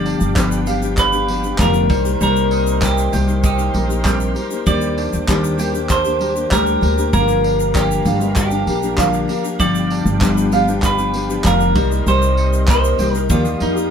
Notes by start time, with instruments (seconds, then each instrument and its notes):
Already playing: upright bass G1, steel-string acoustic guitar G2 D3 F3 B3 D4 G4, mandolin G3 F5, tonewheel organ G4 F5 G5, clean electric guitar D5
0.06 mandolin D4, tambourine
0.20 upright bass G1, shaker
0.35 steel-string acoustic guitar G2 D3 F3 B3 D4 G4, mandolin B4, kick, clap, shaker
0.52 shaker
0.66 steel-string acoustic guitar F3 B3 D4 G4, mandolin F5, tambourine, shaker
0.82 steel-string acoustic guitar F3 B3 D4 G4, shaker
0.97 mandolin D4, clean electric guitar B4, kick, clap, shaker
1.13 steel-string acoustic guitar F3 B3 D4 G4, shaker
1.28 steel-string acoustic guitar F3 B3 D4 G4, tambourine
1.44 steel-string acoustic guitar F3 B3 D4 G4, shaker
1.58 upright bass F1, steel-string acoustic guitar G2 D3 F3 B3 D4 G4, clean electric guitar A#4, mandolin F5, kick, clap, shaker
1.74 shaker
1.89 upright bass C2, steel-string acoustic guitar G3 A#3 D#4 G4, mandolin G3, tonewheel organ A#4 C5 C6, kick, tambourine
2.05 steel-string acoustic guitar A#3 D#4 G4, shaker
2.20 upright bass C2, steel-string acoustic guitar C3 G3 A#3 D#4 G4, mandolin G3, clean electric guitar A#4, shaker
2.36 shaker
2.51 mandolin D#4, tambourine
2.67 shaker
2.82 steel-string acoustic guitar C3 G3 A#3 D#4 G4, clean electric guitar G4, mandolin A#4, kick, clap, shaker
2.98 shaker
3.12 upright bass C2, steel-string acoustic guitar G3 A#3 D#4 G4, mandolin G5, tambourine, shaker
3.28 steel-string acoustic guitar A#3 D#4 G4, shaker
3.43 mandolin D#4, clean electric guitar G4, kick, shaker
3.58 steel-string acoustic guitar A#3 D#4 G4, shaker
3.74 upright bass A#1, steel-string acoustic guitar G3 A#3 D#4 G4, mandolin A#4, tambourine
3.89 steel-string acoustic guitar A#3 D#4 G4, shaker
4.04 steel-string acoustic guitar C3 G3 A#3 D#4 G4, mandolin G5, kick, clap, shaker
4.20 shaker
4.35 steel-string acoustic guitar G3 A#3 D#4 G4, mandolin A#4, tambourine
4.51 steel-string acoustic guitar A#3 D#4 G4, shaker
4.66 upright bass D#2, steel-string acoustic guitar D#3 G3 A#3 D4 G4, mandolin G3, tonewheel organ G4 D6, clean electric guitar D5, kick, shaker
4.81 shaker
4.98 mandolin D4, tambourine
5.13 upright bass D#2, shaker
5.27 steel-string acoustic guitar D#3 G3 A#3 D4 G4, mandolin A#4, kick, clap, shaker
5.44 shaker
5.58 steel-string acoustic guitar G3 A#3 D4 G4, mandolin G5, tambourine, shaker
5.73 steel-string acoustic guitar A#3 D4 G4, shaker
5.90 mandolin D4, clean electric guitar C5, kick, clap, shaker
6.05 steel-string acoustic guitar A#3 D4 G4, shaker
6.19 steel-string acoustic guitar G3 A#3 D4 G4, mandolin A#4, tambourine
6.35 steel-string acoustic guitar A#3 D4 G4, shaker
6.51 upright bass D2, steel-string acoustic guitar G3 A#3 D4 G4, clean electric guitar A#4, mandolin G5, kick, clap, shaker
6.67 shaker
6.81 upright bass D2, steel-string acoustic guitar G3 A#3 D4 G4, mandolin A#4, tambourine
6.97 steel-string acoustic guitar A#3 D4 G4, shaker
7.13 upright bass G1, steel-string acoustic guitar G2 D3 F3 A#3 D4 G4, mandolin A#3, tonewheel organ G4 F5 A#5, clean electric guitar A#4, kick, shaker
7.28 shaker
7.44 mandolin D4, tambourine
7.60 shaker
7.75 steel-string acoustic guitar G2 D3 F3 A#3 D4 G4, clean electric guitar G4, mandolin A#4, kick, clap, shaker
7.91 shaker
8.05 upright bass G1, steel-string acoustic guitar F3 A#3 D4 G4, mandolin F5, tambourine, shaker
8.20 steel-string acoustic guitar F3 A#3 D4 G4, shaker
8.36 mandolin D4, clean electric guitar G4, kick, clap, shaker
8.51 steel-string acoustic guitar F3 A#3 D4 G4, shaker
8.67 upright bass A#1, steel-string acoustic guitar F3 A#3 D4 G4, mandolin A#4, tambourine
8.82 steel-string acoustic guitar F3 A#3 D4 G4, shaker
8.97 steel-string acoustic guitar G2 D3 F3 A#3 D4 G4, clean electric guitar F4, mandolin F5, kick, clap, shaker
9.13 shaker
9.28 steel-string acoustic guitar F3 A#3 D4 G4, mandolin A#4, tambourine
9.43 steel-string acoustic guitar F3 A#3 D4 G4, shaker
9.59 upright bass G1, steel-string acoustic guitar G2 D3 F3 B3 D4 G4, mandolin G3, tonewheel organ G4 G5, clean electric guitar D5, kick, shaker
9.75 shaker
9.90 mandolin D4, tambourine
10.05 upright bass G1, shaker
10.21 steel-string acoustic guitar G2 D3 F3 B3 D4 G4, mandolin B4, kick, clap, shaker
10.38 shaker
10.51 steel-string acoustic guitar F3 B3 D4 G4, mandolin F5, tambourine, shaker
10.67 steel-string acoustic guitar F3 B3 D4 G4, shaker
10.82 mandolin D4, clean electric guitar B4, kick, clap, shaker
10.98 steel-string acoustic guitar F3 B3 D4 G4, shaker
11.13 steel-string acoustic guitar F3 B3 D4 G4, tambourine
11.29 steel-string acoustic guitar F3 B3 D4 G4, shaker
11.44 upright bass F1, steel-string acoustic guitar G2 D3 F3 B3 D4 G4, clean electric guitar A#4, mandolin F5, kick, clap, shaker
11.60 shaker
11.75 upright bass C2, steel-string acoustic guitar G3 A#3 D#4 G4, mandolin G3, tonewheel organ A#4 D#5 C6, kick, tambourine
11.90 steel-string acoustic guitar A#3 D#4 G4, shaker
12.06 upright bass C2, steel-string acoustic guitar C3 G3 A#3 D#4 G4, mandolin G3, clean electric guitar C5, shaker
12.22 shaker
12.37 mandolin D#4, tambourine
12.53 shaker
12.67 steel-string acoustic guitar C3 G3 A#3 D#4 G4, mandolin A#4, clean electric guitar C5, kick, clap, shaker
12.84 shaker
12.98 upright bass C2, steel-string acoustic guitar G3 A#3 D#4 G4, mandolin G5, tambourine, shaker
13.13 steel-string acoustic guitar A#3 D#4 G4, clean electric guitar A#4, shaker
13.29 upright bass D#2, steel-string acoustic guitar D#3 F3 A#3 D#4 G4, mandolin G3, clean electric guitar F4, tonewheel organ G4 F5 D#6, kick, shaker
13.45 steel-string acoustic guitar A#3 D#4 G4, shaker
13.60 upright bass F2, steel-string acoustic guitar F3 A#3 D#4 G4, clean electric guitar D#4, mandolin A#4, tambourine
13.75 steel-string acoustic guitar A#3 D#4 G4, shaker